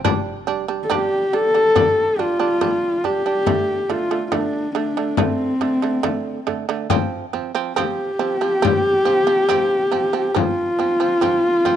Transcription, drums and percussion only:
0.05 frame drum
0.48 frame drum
0.91 frame drum
1.76 frame drum
2.19 frame drum
2.61 frame drum
3.04 frame drum
3.46 frame drum
3.89 frame drum
4.32 frame drum
5.17 frame drum
5.61 frame drum
6.04 frame drum
6.48 frame drum
6.90 frame drum
7.35 frame drum
7.78 frame drum
8.65 frame drum
9.07 frame drum
9.51 frame drum
9.94 frame drum
10.36 frame drum
10.80 frame drum
11.23 frame drum
11.66 frame drum

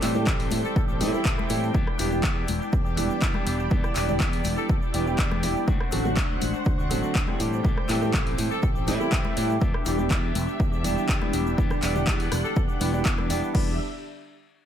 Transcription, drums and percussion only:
0.02 clap, open hi-hat, shaker
0.14 high conga, shaker
0.27 kick, clap, shaker
0.40 open hi-hat
0.51 open hi-hat, high conga, shaker
0.64 shaker
0.76 kick, shaker
0.88 shaker
1.01 open hi-hat, high conga, shaker
1.14 shaker
1.25 kick, clap, shaker
1.38 cross-stick, high conga
1.49 open hi-hat, shaker
1.63 shaker
1.74 kick, high conga, shaker
1.87 cross-stick
1.99 open hi-hat, shaker
2.12 high conga, shaker
2.23 kick, clap, shaker
2.48 open hi-hat, high conga, shaker
2.62 shaker
2.73 kick, shaker
2.85 shaker
2.97 open hi-hat, high conga, shaker
3.10 shaker
3.22 kick, clap, shaker
3.34 cross-stick, high conga
3.47 open hi-hat, shaker
3.59 shaker
3.70 kick, high conga, shaker
3.84 cross-stick, low conga, shaker
3.95 clap, open hi-hat, shaker
4.09 high conga, low conga, shaker
4.20 kick, clap, shaker
4.33 open hi-hat, shaker
4.44 open hi-hat, high conga, shaker
4.57 shaker
4.69 kick, shaker
4.82 shaker
4.94 open hi-hat, high conga, shaker
5.07 shaker
5.19 kick, clap, shaker
5.31 cross-stick, high conga
5.43 open hi-hat, shaker
5.56 shaker
5.68 kick, high conga, shaker
5.80 cross-stick
5.91 open hi-hat, shaker
6.05 high conga, shaker
6.16 kick, clap, shaker
6.41 open hi-hat, high conga, shaker
6.54 shaker
6.65 kick, shaker
6.79 shaker
6.90 open hi-hat, high conga, shaker
7.03 shaker
7.15 kick, clap, shaker
7.27 cross-stick, high conga
7.40 open hi-hat, shaker
7.53 shaker
7.64 kick, high conga, shaker
7.77 cross-stick
7.88 clap, open hi-hat, shaker
8.02 high conga, shaker
8.13 kick, clap, shaker
8.27 open hi-hat
8.38 open hi-hat, high conga, shaker
8.51 shaker
8.63 kick, shaker
8.75 shaker
8.87 open hi-hat, high conga, shaker
9.00 shaker
9.12 kick, clap, shaker
9.25 cross-stick, high conga
9.37 open hi-hat, shaker
9.50 shaker
9.61 kick, high conga, shaker
9.74 cross-stick
9.86 open hi-hat, shaker
9.98 high conga, shaker
10.11 kick, clap, shaker
10.35 open hi-hat, high conga, shaker
10.48 shaker
10.60 kick, shaker
10.73 shaker
10.84 open hi-hat, high conga, shaker
10.98 shaker
11.09 kick, clap, shaker
11.22 cross-stick, high conga
11.33 open hi-hat, shaker
11.47 shaker
11.58 kick, high conga, shaker
11.70 cross-stick, low conga, shaker
11.83 clap, open hi-hat, shaker
11.95 high conga, low conga, shaker
12.07 kick, clap, shaker
12.20 open hi-hat, shaker
12.32 cross-stick, open hi-hat, high conga, shaker
12.44 shaker
12.56 kick, shaker
12.69 shaker
12.81 open hi-hat, high conga, shaker
12.94 shaker
13.06 kick, clap, shaker
13.18 cross-stick, high conga
13.30 open hi-hat, shaker
13.43 shaker
13.55 kick, crash

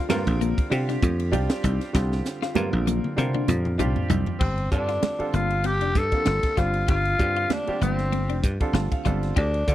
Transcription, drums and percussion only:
0.10 snare, hi-hat pedal, ride, high conga
0.27 kick, ride
0.41 hi-hat pedal
0.58 kick, ride
0.72 hi-hat pedal, ride, muted conga
0.89 snare, ride
1.02 kick, hi-hat pedal, high conga
1.20 ride
1.33 hi-hat pedal, ride, high conga
1.50 snare, ride
1.64 kick, hi-hat pedal, muted conga
1.81 snare, ride
1.95 kick, snare, hi-hat pedal
2.12 snare
2.25 snare, hi-hat pedal, muted conga
2.42 snare
2.55 hi-hat pedal, high tom, high conga
2.73 high tom
2.87 hi-hat pedal, high tom
3.04 mid tom
3.17 hi-hat pedal, mid tom, muted conga
3.34 mid tom
3.48 hi-hat pedal, mid tom, high conga
3.65 mid tom
3.79 hi-hat pedal, mid tom, high conga
3.96 floor tom, high conga
4.10 floor tom, hi-hat pedal, low conga
4.26 floor tom, low conga
4.41 kick, crash, muted conga
4.58 ride
4.72 kick, hi-hat pedal, muted conga
4.89 snare, ride
5.03 snare, ride, high conga
5.20 ride
5.33 hi-hat pedal
5.50 ride
5.64 ride
5.81 ride
5.95 kick, snare, hi-hat pedal, high conga
6.12 kick, ride
6.26 snare, ride, muted conga, high conga
6.43 kick, snare, ride
6.57 kick, snare, hi-hat pedal
6.74 ride
6.88 kick, ride, muted conga
7.05 ride
7.19 kick, hi-hat pedal, muted conga
7.36 ride
7.50 snare, ride, high conga
7.67 ride
7.81 hi-hat pedal, low conga
7.99 snare, ride
8.12 ride, muted conga, high conga
8.29 ride
8.43 kick, snare, hi-hat pedal
8.60 kick, ride
8.74 snare, ride, muted conga, high conga
8.92 kick, ride
9.05 kick, hi-hat pedal, low conga
9.23 snare, ride
9.37 kick, ride, muted conga
9.54 ride
9.68 kick, hi-hat pedal

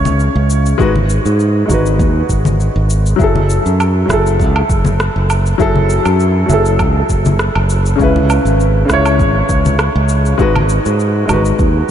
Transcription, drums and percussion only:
0.05 high conga, cabasa
0.20 cabasa
0.50 cabasa
0.66 cabasa
0.79 kick, cabasa
0.96 high conga
1.10 cabasa
1.26 cabasa
1.40 cabasa
1.69 kick, high conga, cabasa
1.86 cabasa
1.99 kick, cabasa
2.29 kick, cabasa
2.45 high conga, cabasa
2.60 cabasa
2.90 cabasa
3.06 cabasa
3.20 kick, cabasa
3.35 high conga
3.50 cabasa
3.66 cabasa
3.80 cabasa, low woodblock
4.09 kick, cross-stick, high conga, cabasa
4.26 cabasa
4.40 kick, cabasa
4.56 low woodblock
4.70 kick, cabasa
4.85 high conga, cabasa
5.00 cross-stick, cabasa
5.30 cabasa, low woodblock
5.46 cabasa
5.60 kick, cabasa
5.76 high conga
5.90 cabasa
6.05 cabasa, low woodblock
6.20 cabasa
6.50 high conga, cabasa
6.65 cabasa
6.79 kick, cabasa, low woodblock
7.09 kick, cabasa
7.25 high conga, cabasa
7.39 cross-stick, cabasa
7.55 low woodblock
7.70 cabasa
7.86 cabasa
7.99 kick, cabasa
8.16 high conga
8.30 cabasa, low woodblock
8.46 cabasa
8.60 cabasa
8.89 kick, cross-stick, high conga, cabasa
9.06 cabasa, low woodblock
9.19 kick, cabasa
9.49 kick, cabasa
9.65 high conga, cabasa
9.79 cross-stick, cabasa, low woodblock
10.09 cabasa
10.26 cabasa
10.39 kick, cabasa
10.56 high conga, low woodblock
10.69 cabasa
10.86 cabasa
11.00 cabasa
11.29 kick, high conga, cabasa, low woodblock
11.45 cabasa
11.59 kick, cabasa

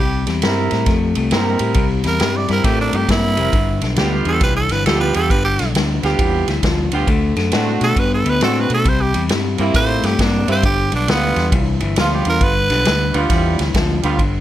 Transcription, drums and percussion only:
0.27 snare, ride
0.42 snare, ride
0.71 snare, ride
0.86 kick, snare, ride
1.15 ride
1.31 snare, ride
1.59 ride
1.74 kick, ride
2.04 snare, ride
2.20 snare, ride
2.48 snare, ride
2.64 kick, snare, ride
2.93 ride
3.09 kick, snare, ride
3.37 ride
3.53 kick, ride
3.81 snare, ride
3.96 snare, ride
4.25 ride
4.41 kick, snare, ride
4.69 snare, ride
4.86 snare, ride
5.14 ride
5.30 kick, ride
5.59 snare, ride
5.75 snare, ride
6.03 snare, ride
6.19 kick, ride
6.48 snare, ride
6.63 kick, snare, ride
6.92 ride
7.07 kick, ride
7.37 snare, ride
7.52 snare, ride
7.81 snare, ride
7.96 kick, ride
8.26 ride
8.41 snare, ride
8.70 ride
8.85 kick, ride
9.14 ride
9.29 snare, ride
9.58 ride
9.74 kick, snare, ride
10.03 snare, ride
10.19 kick, snare, ride
10.48 ride
10.63 kick, ride
10.92 ride
11.08 snare, ride
11.36 snare, ride
11.52 kick, ride
11.80 ride
11.96 snare, ride
12.25 ride
12.41 kick, ride
12.70 snare, ride
12.85 snare, ride
13.14 ride
13.30 kick, snare, ride
13.59 snare, ride
13.74 kick, snare, ride
14.03 ride
14.19 kick, ride

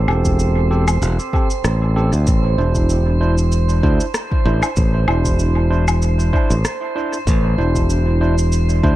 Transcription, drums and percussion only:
0.08 low woodblock
0.25 kick, shaker
0.39 shaker
0.88 low woodblock, shaker
1.02 shaker
1.19 shaker
1.33 kick
1.50 shaker
1.64 cross-stick, shaker
2.13 shaker
2.27 kick, shaker
2.75 kick, shaker
2.89 shaker
3.38 shaker
3.52 shaker
3.69 shaker
3.83 kick
4.00 shaker
4.14 cross-stick, shaker
4.32 kick
4.63 low woodblock, shaker
4.76 kick, shaker
5.08 low woodblock
5.25 kick, shaker
5.39 shaker
5.88 low woodblock, shaker
6.02 shaker
6.19 shaker
6.33 kick
6.51 shaker
6.65 cross-stick, shaker
7.13 shaker
7.27 kick, shaker
7.75 kick, shaker
7.90 shaker
8.38 shaker
8.52 shaker
8.69 shaker
8.83 kick

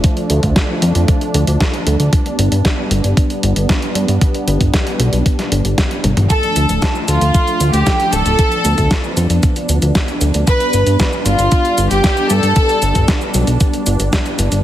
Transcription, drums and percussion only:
0.04 kick, closed hi-hat
0.17 closed hi-hat
0.30 closed hi-hat
0.43 kick, closed hi-hat
0.56 kick, snare, closed hi-hat
0.82 closed hi-hat
0.95 closed hi-hat
1.08 kick, closed hi-hat
1.21 closed hi-hat
1.34 closed hi-hat
1.47 closed hi-hat
1.60 kick, snare, closed hi-hat
1.74 closed hi-hat
1.87 closed hi-hat
2.00 closed hi-hat
2.13 kick, closed hi-hat
2.26 closed hi-hat
2.39 closed hi-hat
2.52 closed hi-hat
2.65 kick, snare, closed hi-hat
2.91 closed hi-hat
3.04 closed hi-hat
3.17 kick, closed hi-hat
3.30 closed hi-hat
3.43 closed hi-hat
3.56 closed hi-hat
3.69 kick, snare, closed hi-hat
3.82 closed hi-hat
3.95 closed hi-hat
4.08 closed hi-hat
4.21 kick, closed hi-hat
4.34 closed hi-hat
4.48 closed hi-hat
4.61 kick, closed hi-hat
4.74 kick, snare, closed hi-hat
4.87 closed hi-hat
5.00 closed hi-hat
5.13 closed hi-hat
5.26 kick, closed hi-hat
5.39 snare, closed hi-hat
5.52 closed hi-hat
5.65 closed hi-hat
5.78 kick, snare, closed hi-hat
5.91 closed hi-hat
6.04 closed hi-hat, high tom
6.17 closed hi-hat, mid tom
6.30 kick, closed hi-hat, cabasa
6.43 closed hi-hat, cabasa
6.56 closed hi-hat, cabasa
6.69 closed hi-hat, cabasa
6.82 kick, snare, closed hi-hat, cabasa
6.95 cabasa
7.08 closed hi-hat, cabasa
7.21 closed hi-hat, cabasa
7.35 kick, closed hi-hat, cabasa
7.48 closed hi-hat, cabasa
7.61 closed hi-hat, cabasa
7.74 closed hi-hat, cabasa
7.87 kick, snare, closed hi-hat, cabasa
8.00 closed hi-hat, cabasa
8.13 closed hi-hat, cabasa
8.26 closed hi-hat, cabasa
8.39 kick, closed hi-hat, cabasa
8.52 closed hi-hat, cabasa
8.65 closed hi-hat, cabasa
8.78 kick, closed hi-hat, cabasa
8.91 kick, snare, closed hi-hat, cabasa
9.04 cabasa
9.17 closed hi-hat, cabasa
9.30 closed hi-hat, cabasa
9.43 kick, closed hi-hat, cabasa
9.56 closed hi-hat, cabasa
9.69 closed hi-hat, cabasa
9.82 closed hi-hat, cabasa
9.95 kick, snare, closed hi-hat, cabasa
10.08 closed hi-hat, cabasa
10.21 closed hi-hat, cabasa
10.34 closed hi-hat, cabasa
10.47 kick, closed hi-hat, cabasa
10.60 closed hi-hat, cabasa
10.73 closed hi-hat, cabasa
10.87 closed hi-hat, cabasa
11.00 kick, snare, closed hi-hat, cabasa
11.13 cabasa
11.26 closed hi-hat, cabasa
11.39 closed hi-hat, cabasa
11.52 kick, closed hi-hat, cabasa
11.65 closed hi-hat, cabasa
11.78 closed hi-hat, cabasa
11.91 closed hi-hat, cabasa
12.04 kick, snare, closed hi-hat, cabasa
12.17 closed hi-hat, cabasa
12.30 closed hi-hat, cabasa
12.43 closed hi-hat, cabasa
12.56 kick, closed hi-hat, cabasa
12.69 closed hi-hat, cabasa
12.82 closed hi-hat, cabasa
12.95 kick, closed hi-hat, cabasa
13.08 kick, snare, closed hi-hat, cabasa
13.21 cabasa
13.34 closed hi-hat, cabasa
13.47 closed hi-hat, cabasa
13.60 kick, closed hi-hat, cabasa
13.73 closed hi-hat, cabasa
13.86 closed hi-hat, cabasa
14.00 closed hi-hat, cabasa
14.13 kick, snare, closed hi-hat, cabasa
14.26 closed hi-hat, cabasa
14.39 closed hi-hat, cabasa
14.52 closed hi-hat, cabasa

